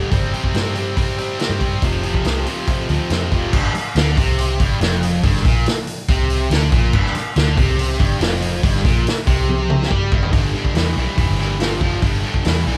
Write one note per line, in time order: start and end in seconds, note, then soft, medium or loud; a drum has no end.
0.00 0.10 G2 medium
0.00 0.10 D3 medium
0.00 0.11 G3 medium
0.11 0.31 G1 medium
0.11 0.31 C3 medium
0.11 0.32 G3 medium
0.11 0.34 C4 loud
0.11 kick loud
0.11 open hi-hat medium
0.33 0.53 C3 medium
0.33 0.54 G3 medium
0.33 0.56 C4 medium
0.33 open hi-hat soft
0.44 kick medium
0.54 1.36 G2 medium
0.54 0.74 C3 medium
0.54 0.75 G3 medium
0.54 0.77 C4 medium
0.54 snare loud
0.54 open hi-hat medium
0.75 0.95 C3 medium
0.75 0.96 G3 medium
0.75 0.96 C4 loud
0.75 open hi-hat soft
0.96 1.16 C3 medium
0.96 1.17 G3 medium
0.96 1.17 C4 medium
0.96 kick loud
0.96 open hi-hat medium
1.17 1.37 C3 medium
1.17 1.38 G3 medium
1.17 1.39 C4 medium
1.17 open hi-hat soft
1.38 1.59 C3 medium
1.38 1.59 G3 medium
1.38 1.60 C4 loud
1.38 snare loud
1.38 open hi-hat medium
1.49 1.80 G2 medium
1.60 1.81 C3 medium
1.60 1.81 G3 medium
1.60 1.81 C4 medium
1.60 kick medium
1.60 open hi-hat soft
1.82 2.22 F1 loud
1.82 2.02 F2 medium
1.82 2.03 C3 medium
1.82 2.04 F3 loud
1.82 kick loud
1.82 open hi-hat medium
2.03 2.24 F2 medium
2.03 2.25 C3 medium
2.03 2.25 F3 medium
2.03 open hi-hat soft
2.14 kick medium
2.24 2.44 C2 medium
2.24 2.46 F2 medium
2.24 2.46 C3 medium
2.24 2.47 F3 medium
2.24 snare loud
2.24 open hi-hat medium
2.46 2.66 F2 medium
2.46 2.67 C3 medium
2.46 2.67 F3 medium
2.46 open hi-hat medium
2.67 2.88 F2 medium
2.67 2.88 C3 medium
2.67 2.89 F3 medium
2.67 kick loud
2.67 open hi-hat medium
2.89 2.99 D2 medium
2.89 3.09 F2 medium
2.89 3.10 C3 medium
2.89 3.10 F3 medium
2.89 open hi-hat soft
3.10 3.33 F2 medium
3.10 3.30 F2 medium
3.10 3.31 C3 medium
3.10 3.32 F3 medium
3.10 snare loud
3.10 open hi-hat medium
3.32 3.42 F1 medium
3.32 3.52 F2 medium
3.32 3.52 C3 medium
3.32 3.53 F3 medium
3.32 kick medium
3.32 open hi-hat soft
3.53 3.73 G1 medium
3.53 3.73 G2 loud
3.53 kick loud
3.53 crash loud
3.75 muted distorted electric guitar stroke medium
3.75 snare soft
3.75 open hi-hat medium
3.95 4.15 D2 medium
3.95 4.17 D3 loud
3.95 snare loud
3.95 open hi-hat medium
4.17 4.57 C2 medium
4.17 4.60 C3 loud
4.17 kick loud
4.17 open hi-hat medium
4.38 open hi-hat medium
4.60 4.80 G1 medium
4.60 4.81 G2 loud
4.60 kick loud
4.60 open hi-hat medium
4.80 5.20 F1 medium
4.80 5.23 F2 loud
4.80 snare loud
4.80 open hi-hat medium
5.03 open hi-hat medium
5.24 5.43 G1 medium
5.24 5.45 G2 loud
5.24 kick loud
5.24 open hi-hat medium
5.36 snare soft
5.45 5.65 A#1 loud
5.45 5.66 A#2 loud
5.45 kick loud
5.45 snare soft
5.45 open hi-hat medium
5.66 snare loud
5.66 open hi-hat medium
5.87 open hi-hat medium
6.08 6.48 C2 loud
6.08 6.51 C3 loud
6.08 kick loud
6.08 open hi-hat medium
6.30 open hi-hat medium
6.50 6.70 D2 medium
6.50 6.72 D3 medium
6.50 snare loud
6.50 open hi-hat medium
6.72 6.92 A#1 medium
6.72 6.93 A#2 medium
6.72 kick loud
6.72 open hi-hat medium
6.93 7.13 G1 medium
6.93 7.14 G2 loud
6.93 kick loud
6.93 crash medium
7.06 snare soft
7.15 muted fingered electric bass stroke soft
7.15 muted distorted electric guitar stroke medium
7.15 snare soft
7.15 open hi-hat medium
7.36 7.56 D2 medium
7.36 7.57 D3 loud
7.36 snare loud
7.36 open hi-hat medium
7.57 7.97 C2 medium
7.57 7.99 C3 loud
7.57 kick loud
7.57 open hi-hat medium
7.79 open hi-hat medium
8.00 8.20 G1 medium
8.00 8.21 G2 loud
8.00 kick loud
8.00 open hi-hat medium
8.20 8.60 F1 loud
8.20 8.63 F2 loud
8.20 snare loud
8.20 open hi-hat medium
8.42 open hi-hat medium
8.63 8.83 G1 medium
8.63 8.84 G2 loud
8.63 kick loud
8.63 open hi-hat medium
8.76 snare soft
8.85 9.04 A#1 medium
8.85 9.05 A#2 loud
8.85 kick loud
8.85 snare soft
8.85 open hi-hat medium
9.07 snare loud
9.07 open hi-hat medium
9.27 9.87 C2 medium
9.27 9.90 C3 loud
9.27 kick loud
9.27 open hi-hat medium
9.49 high tom medium
9.70 mid tom medium
9.82 snare medium
9.90 10.10 G2 medium
9.90 10.11 G3 medium
9.90 kick medium
10.12 10.32 G1 medium
10.12 10.32 G2 medium
10.12 kick loud
10.22 floor tom medium
10.33 10.53 G1 medium
10.33 10.52 G2 medium
10.33 10.52 D3 medium
10.33 kick loud
10.33 open hi-hat medium
10.54 10.73 G2 medium
10.54 10.73 D3 medium
10.65 kick medium
10.75 10.95 E2 medium
10.75 10.94 G2 medium
10.75 10.95 E3 medium
10.75 snare loud
10.75 open hi-hat medium
10.96 11.06 B1 medium
10.96 11.16 G2 medium
10.96 11.16 E3 medium
11.17 11.28 E1 medium
11.17 11.36 G2 medium
11.17 11.37 E3 medium
11.17 kick loud
11.17 open hi-hat medium
11.29 11.99 G1 medium
11.39 11.58 G2 medium
11.39 11.58 E3 medium
11.39 snare soft
11.60 11.79 G2 medium
11.60 11.79 F3 medium
11.60 snare loud
11.60 open hi-hat medium
11.81 12.00 G2 medium
11.81 12.01 F3 medium
11.81 kick medium
12.02 12.22 G1 medium
12.02 12.22 G2 medium
12.02 12.22 D3 medium
12.02 kick loud
12.02 open hi-hat medium
12.23 12.43 G2 medium
12.23 12.43 D3 medium
12.34 kick medium
12.44 12.65 E2 medium
12.44 12.64 G2 medium
12.44 12.64 E3 medium
12.44 snare loud
12.44 open hi-hat medium
12.66 12.76 B1 medium
12.66 12.77 G2 medium
12.66 12.77 E3 medium